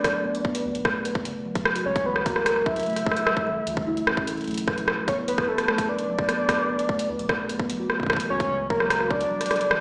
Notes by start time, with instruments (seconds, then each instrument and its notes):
Already playing: soft synth lead D5
0.04 kalimba F#3, kick, cross-stick, closed hi-hat
0.25 analog synth bass F#1, kalimba B3
0.35 kalimba B3, closed hi-hat
0.45 kalimba B3, kick
0.55 kalimba B4, closed hi-hat
0.65 analog synth bass D2, kalimba B3
0.75 analog synth bass B1, closed hi-hat
0.85 kalimba A3, kick, cross-stick
1.05 kalimba B4, closed hi-hat
1.15 kick
1.25 analog synth bass F#1, kalimba C#3, closed hi-hat
1.45 kalimba F#3
1.55 kalimba F#3, kick, closed hi-hat
1.65 kalimba F#3, cross-stick
1.75 kalimba F#4, closed hi-hat
1.86 analog synth bass C#2, kalimba F#3, soft synth lead C#5
1.96 kick, closed hi-hat
2.06 kalimba E3, soft synth lead B4
2.16 cross-stick
2.26 kalimba F#4, soft synth lead A#4, kick, closed hi-hat
2.36 cross-stick
2.46 kalimba C#3, cross-stick, closed hi-hat
2.56 cross-stick
2.66 kalimba F#3, soft synth lead E5, kick
2.76 kalimba F#3, closed hi-hat
2.80 closed hi-hat
2.83 closed hi-hat
2.86 kalimba A3, closed hi-hat
2.90 closed hi-hat
2.93 kalimba A4, cross-stick, closed hi-hat
2.96 closed hi-hat
3.06 kalimba A3, kick
3.12 cross-stick
3.17 closed hi-hat
3.27 kalimba G3, cross-stick
3.37 kick
3.47 analog synth bass A1, kalimba A4
3.67 analog synth bass D2, kalimba E3, closed hi-hat
3.77 kick
3.87 kalimba E4
3.97 kalimba A3, closed hi-hat
4.07 analog synth bass A1, kalimba C#4, cross-stick
4.17 kalimba E3, kick
4.27 kalimba A4, closed hi-hat
4.37 analog synth bass E1, closed hi-hat
4.41 closed hi-hat
4.44 analog synth bass B1, kalimba A3, closed hi-hat
4.47 closed hi-hat
4.51 closed hi-hat
4.54 closed hi-hat
4.58 closed hi-hat
4.68 kalimba B4, kick, cross-stick
4.78 closed hi-hat
4.88 kalimba F#3, cross-stick
5.08 analog synth bass F#1, kalimba B3, soft synth lead C#5, kick, closed hi-hat
5.18 kalimba B3
5.28 kalimba B3, soft synth lead B4, closed hi-hat
5.38 kalimba B4, kick, cross-stick
5.48 kalimba B3, soft synth lead A4
5.58 cross-stick, closed hi-hat
5.68 kalimba A3, cross-stick
5.78 kick, cross-stick, closed hi-hat
5.88 kalimba B4, soft synth lead D5
5.99 closed hi-hat
6.08 kalimba F#3
6.19 kick, cross-stick
6.29 kalimba B3, cross-stick, closed hi-hat
6.39 kalimba B3
6.49 kalimba B3, kick, cross-stick, closed hi-hat
6.59 kalimba B4
6.69 analog synth bass F#1, kalimba B3
6.79 closed hi-hat
6.89 kalimba A3, kick
6.99 closed hi-hat
7.09 analog synth bass D2, kalimba B4
7.19 analog synth bass B1, closed hi-hat
7.29 kalimba F#3, kick, cross-stick
7.49 kalimba B3, closed hi-hat
7.59 kalimba B3, kick
7.70 analog synth bass F#1, kalimba F#3, closed hi-hat
7.80 kalimba F#4
7.90 kalimba F#3, cross-stick
8.00 kick
8.03 kick
8.06 kick, cross-stick
8.10 kalimba E3, kick
8.13 kick
8.17 kick, closed hi-hat
8.30 analog synth bass C#2, kalimba F#4, soft synth lead C#5
8.40 kick, closed hi-hat
8.50 kalimba C#3
8.70 kalimba F#3, soft synth lead A#4, kick
8.80 kalimba F#3, cross-stick
8.90 kalimba F#3, cross-stick, closed hi-hat
9.00 kalimba F#4, cross-stick
9.10 kalimba F#3, soft synth lead D5, kick
9.21 closed hi-hat
9.31 kalimba G3
9.41 cross-stick, closed hi-hat
9.46 closed hi-hat
9.51 kalimba A4, cross-stick, closed hi-hat
9.56 closed hi-hat
9.61 closed hi-hat
9.71 kalimba E3, cross-stick